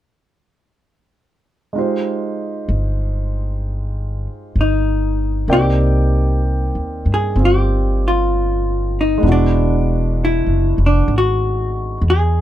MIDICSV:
0, 0, Header, 1, 4, 480
1, 0, Start_track
1, 0, Key_signature, -3, "minor"
1, 0, Tempo, 938967
1, 894, Time_signature, 4, 2, 24, 8
1, 3768, Tempo, 928793
1, 6372, End_track
2, 0, Start_track
2, 0, Title_t, "Hollow-body jazz guitar"
2, 0, Program_c, 0, 26
2, 2355, Note_on_c, 0, 63, 48
2, 2825, Note_on_c, 0, 67, 70
2, 2835, Note_off_c, 0, 63, 0
2, 3276, Note_off_c, 0, 67, 0
2, 3649, Note_on_c, 0, 68, 57
2, 3793, Note_off_c, 0, 68, 0
2, 3810, Note_on_c, 0, 67, 61
2, 4118, Note_off_c, 0, 67, 0
2, 4133, Note_on_c, 0, 65, 57
2, 4605, Note_off_c, 0, 65, 0
2, 4614, Note_on_c, 0, 63, 50
2, 4757, Note_off_c, 0, 63, 0
2, 4774, Note_on_c, 0, 62, 62
2, 5245, Note_off_c, 0, 62, 0
2, 5254, Note_on_c, 0, 64, 59
2, 5529, Note_off_c, 0, 64, 0
2, 5573, Note_on_c, 0, 62, 56
2, 5716, Note_off_c, 0, 62, 0
2, 5736, Note_on_c, 0, 66, 66
2, 6170, Note_off_c, 0, 66, 0
2, 6212, Note_on_c, 0, 68, 66
2, 6372, Note_off_c, 0, 68, 0
2, 6372, End_track
3, 0, Start_track
3, 0, Title_t, "Grand piano"
3, 0, Program_c, 1, 0
3, 884, Note_on_c, 1, 56, 35
3, 895, Note_on_c, 1, 63, 34
3, 899, Note_on_c, 1, 65, 32
3, 909, Note_on_c, 1, 67, 35
3, 913, Note_on_c, 1, 72, 38
3, 993, Control_c, 1, 64, 127
3, 2802, Note_off_c, 1, 63, 0
3, 2803, Note_off_c, 1, 56, 0
3, 2804, Note_on_c, 1, 58, 37
3, 2806, Note_on_c, 1, 60, 32
3, 2809, Note_on_c, 1, 79, 42
3, 2810, Note_on_c, 1, 63, 33
3, 2810, Note_on_c, 1, 74, 34
3, 2811, Note_off_c, 1, 65, 0
3, 2814, Control_c, 1, 64, 0
3, 2816, Note_off_c, 1, 67, 0
3, 2818, Note_off_c, 1, 72, 0
3, 2902, Control_c, 1, 64, 127
3, 3756, Note_off_c, 1, 60, 0
3, 3763, Note_on_c, 1, 60, 30
3, 3783, Note_on_c, 1, 65, 33
3, 4702, Note_on_c, 1, 56, 40
3, 4717, Note_on_c, 1, 59, 37
3, 4728, Note_off_c, 1, 58, 0
3, 4729, Note_off_c, 1, 60, 0
3, 4730, Note_on_c, 1, 62, 37
3, 4731, Note_off_c, 1, 63, 0
3, 4731, Note_off_c, 1, 79, 0
3, 4732, Note_off_c, 1, 74, 0
3, 4738, Note_off_c, 1, 65, 0
3, 4738, Control_c, 1, 64, 0
3, 4744, Note_on_c, 1, 64, 35
3, 4757, Note_on_c, 1, 66, 41
3, 4837, Control_c, 1, 64, 127
3, 6372, Note_off_c, 1, 56, 0
3, 6372, Note_off_c, 1, 59, 0
3, 6372, Note_off_c, 1, 62, 0
3, 6372, Note_off_c, 1, 64, 0
3, 6372, Note_off_c, 1, 66, 0
3, 6372, End_track
4, 0, Start_track
4, 0, Title_t, "Upright bass"
4, 0, Program_c, 2, 32
4, 1373, Note_on_c, 2, 31, 54
4, 2178, Note_off_c, 2, 31, 0
4, 2329, Note_on_c, 2, 31, 53
4, 2787, Note_off_c, 2, 31, 0
4, 2801, Note_on_c, 2, 36, 53
4, 3424, Note_off_c, 2, 36, 0
4, 3451, Note_on_c, 2, 39, 40
4, 3598, Note_off_c, 2, 39, 0
4, 3607, Note_on_c, 2, 43, 49
4, 3756, Note_off_c, 2, 43, 0
4, 3760, Note_on_c, 2, 31, 58
4, 4707, Note_off_c, 2, 31, 0
4, 4728, Note_on_c, 2, 28, 58
4, 5348, Note_off_c, 2, 28, 0
4, 5367, Note_on_c, 2, 30, 44
4, 5517, Note_off_c, 2, 30, 0
4, 5530, Note_on_c, 2, 29, 52
4, 5678, Note_off_c, 2, 29, 0
4, 5684, Note_on_c, 2, 32, 62
4, 6144, Note_off_c, 2, 32, 0
4, 6168, Note_on_c, 2, 40, 57
4, 6372, Note_off_c, 2, 40, 0
4, 6372, End_track
0, 0, End_of_file